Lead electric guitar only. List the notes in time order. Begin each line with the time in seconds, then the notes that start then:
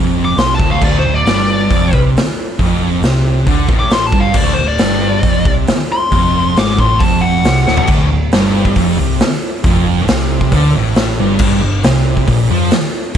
0.25 D6
0.38 C6
0.55 A5
0.71 F5
0.84 D5
0.99 C5
1.14 D5
3.79 D6
3.93 C6
4.07 A5
4.20 F5
4.36 D5
4.54 C5
4.68 D5
5.92 C6
6.59 D6
6.80 C6
6.99 A5
7.22 F#5